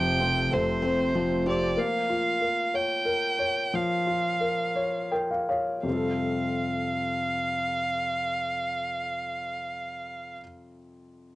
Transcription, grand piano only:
Already playing: C3 F3 C4 A4
0.20 C4
0.51 A4
0.82 C4
1.15 F3
1.47 C4
1.77 A#3
2.10 F4
2.41 A#4
2.74 C#5
3.05 A#4
3.39 C#5
3.74 F3
4.07 F4
4.41 A#4
4.76 C#5
5.12 A#4 G5
5.31 F5
5.49 C#5 F5
5.83 F2 C3
5.87 G3 C4 F4
5.93 A4

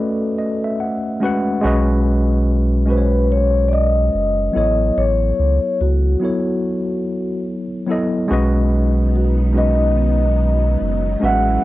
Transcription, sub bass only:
1.64 B1
4.14 F#1
4.56 A1
4.97 A1
5.39 C#2
5.81 C#2
8.31 B1
10.81 F#1
11.23 A1

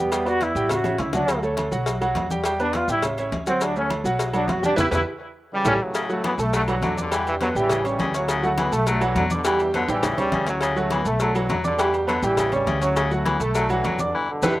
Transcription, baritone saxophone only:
5.95 C#3
6.24 E3
6.53 F#3
6.83 F#3
7.12 E3
7.42 D3
7.71 C#3
8.00 C#3
8.30 C#3
8.58 E3
8.87 F#3
9.17 F#3
9.46 E3
9.75 D3
10.03 C#3
10.33 C#3
10.62 C#3
10.91 E3
11.21 F#3
11.49 F#3
11.79 E3
12.08 D3
12.38 C#3
12.67 C#3
12.96 C#3
13.25 E3
13.55 F#3
13.85 F#3
14.15 E3
14.44 D3

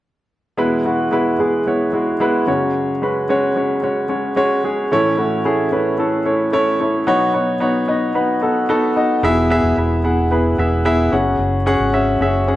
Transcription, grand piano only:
0.57 E2 B2 G#3 B3 E4 B4
0.85 G#3 B3 E4 F#4
1.11 G#3 B3 E4 B4
1.39 G#3 B3 E4 G#4
1.66 G#3 B3 E4 C#5
1.93 G#3 B3 E4 F#4
2.20 G#3 B3 E4 B4
2.47 F#2 C#3 G#3 C#4 F#4 C#5
3.02 G#3 C#4 F#4 B4
3.29 G#3 C#4 F#4 C#5
3.56 G#3 C#4 F#4 C#5
3.82 G#3 C#4 F#4 C#5
4.09 G#3 C#4 F#4 C#5
4.36 G#3 C#4 F#4 C#5
4.64 G#3 C#4 F#4 G#4
4.92 A2 E3 A3 C#4 E4 C#5
5.17 A3 C#4 E4 F#4
5.45 A3 C#4 E4 G#4
5.71 A3 C#4 E4 B4
5.98 A3 C#4 E4 A4
6.25 A3 C#4 E4 C#5
6.52 A3 C#4 E4 C#5
6.80 A3 C#4 E4 C#5
7.07 B2 F#3 B3 D#4 F#4 C#5
7.33 B3 D#4 F#4 C#5
7.60 B3 D#4 F#4 C#5
7.88 B3 D#4 F#4 D#5
8.15 B3 D#4 F#4 B4
8.41 B3 D#4 F#4 A4
8.69 B3 D#4 F#4 A4
8.96 B3 D#4 F#4 D#5
9.23 B2 B3 E4 G#4 E5
9.50 B3 E4 G#4 E5
9.77 B3 E4 G#4 E5
10.04 B3 E4 G#4 F#5
10.31 B3 E4 G#4 B4
10.58 B3 E4 G#4 E5
10.85 B3 E4 G#4 E5
11.12 C#3 C#4 F#4 G#4 F#5
11.66 C#4 F#4 G#4 F#5
11.93 C#4 F#4 G#4 E5
12.21 C#4 F#4 G#4 E5
12.48 C#4 F#4 G#4 F#5

